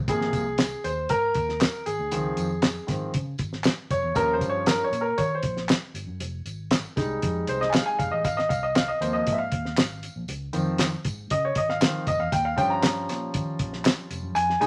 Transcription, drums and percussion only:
0.08 kick, closed hi-hat, tambourine
0.21 snare
0.33 kick, closed hi-hat, tambourine
0.58 snare, clap, closed hi-hat, tambourine
0.84 closed hi-hat, tambourine
1.09 kick, closed hi-hat, tambourine
1.35 kick, closed hi-hat, tambourine
1.49 snare
1.61 snare, clap, closed hi-hat, tambourine
1.86 closed hi-hat, tambourine
2.11 closed hi-hat, tambourine
2.37 closed hi-hat, tambourine
2.62 snare, clap, closed hi-hat, tambourine
2.88 kick, snare, closed hi-hat, tambourine
3.14 kick, closed hi-hat, tambourine
3.38 kick, closed hi-hat, tambourine
3.53 snare
3.64 snare, clap, closed hi-hat, tambourine
3.90 kick, closed hi-hat, tambourine
4.15 kick, closed hi-hat, tambourine
4.41 kick, closed hi-hat, tambourine
4.66 snare, clap, closed hi-hat, tambourine
4.93 closed hi-hat, tambourine
5.18 kick, closed hi-hat, tambourine
5.43 kick, closed hi-hat, tambourine
5.57 snare
5.69 snare, clap, closed hi-hat, tambourine
5.95 closed hi-hat, tambourine
6.20 closed hi-hat, tambourine
6.46 closed hi-hat, tambourine
6.71 snare, clap, closed hi-hat, tambourine
6.97 kick, snare, closed hi-hat, tambourine
7.22 kick, closed hi-hat, tambourine
7.47 closed hi-hat, tambourine
7.62 snare
7.73 snare, clap, closed hi-hat, tambourine
7.99 kick, closed hi-hat, tambourine
8.24 kick, closed hi-hat, tambourine
8.39 snare
8.50 kick, closed hi-hat, tambourine
8.75 snare, clap, closed hi-hat, tambourine
9.02 closed hi-hat, tambourine
9.27 kick, closed hi-hat, tambourine
9.52 kick, closed hi-hat
9.65 snare
9.77 snare, clap, closed hi-hat, tambourine
10.03 closed hi-hat, tambourine
10.28 closed hi-hat, tambourine
10.53 closed hi-hat, tambourine
10.78 snare, clap, closed hi-hat, tambourine
11.05 kick, closed hi-hat, tambourine
11.30 kick, closed hi-hat, tambourine
11.55 kick, closed hi-hat
11.69 snare
11.81 snare, clap, closed hi-hat, tambourine
12.07 kick, closed hi-hat, tambourine
12.32 kick, closed hi-hat, tambourine
12.58 kick, closed hi-hat, tambourine
12.83 snare, clap, closed hi-hat, tambourine
13.09 snare, closed hi-hat, tambourine
13.34 kick, closed hi-hat, tambourine
13.59 kick, closed hi-hat
13.73 snare
13.85 snare, clap, closed hi-hat, tambourine
14.11 closed hi-hat, tambourine
14.35 closed hi-hat, tambourine
14.50 snare
14.61 closed hi-hat, tambourine

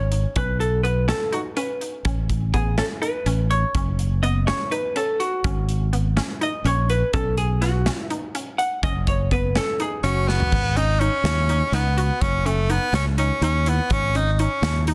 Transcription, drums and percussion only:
0.12 closed hi-hat
0.36 kick, closed hi-hat
0.61 closed hi-hat
0.85 closed hi-hat
1.09 snare, closed hi-hat
1.33 closed hi-hat
1.57 closed hi-hat
1.81 closed hi-hat
2.05 kick, closed hi-hat
2.30 kick, closed hi-hat
2.54 kick, closed hi-hat
2.78 snare, closed hi-hat
3.03 closed hi-hat
3.26 closed hi-hat
3.51 closed hi-hat
3.75 kick, closed hi-hat
3.99 closed hi-hat
4.23 closed hi-hat
4.48 snare, closed hi-hat
4.72 closed hi-hat
4.96 closed hi-hat
5.20 closed hi-hat
5.44 kick, closed hi-hat
5.69 closed hi-hat
5.93 closed hi-hat
6.17 snare, closed hi-hat
6.42 closed hi-hat
6.65 closed hi-hat
6.90 closed hi-hat
7.13 kick, closed hi-hat
7.37 closed hi-hat
7.62 snare, closed hi-hat
7.86 snare, closed hi-hat
8.10 closed hi-hat
8.35 closed hi-hat
8.59 closed hi-hat
8.83 kick, closed hi-hat
9.07 kick, closed hi-hat
9.31 kick, closed hi-hat
9.55 snare, closed hi-hat
9.80 closed hi-hat
10.04 closed hi-hat
10.29 snare
10.40 floor tom
10.52 kick, crash
10.77 closed hi-hat
11.01 closed hi-hat
11.25 snare, closed hi-hat
11.49 closed hi-hat
11.73 snare, closed hi-hat
11.98 closed hi-hat
12.22 kick, closed hi-hat
12.46 closed hi-hat
12.70 closed hi-hat
12.94 snare, closed hi-hat
13.18 closed hi-hat
13.42 closed hi-hat
13.66 closed hi-hat
13.90 kick, closed hi-hat
14.15 closed hi-hat
14.39 closed hi-hat
14.63 snare, closed hi-hat
14.87 closed hi-hat

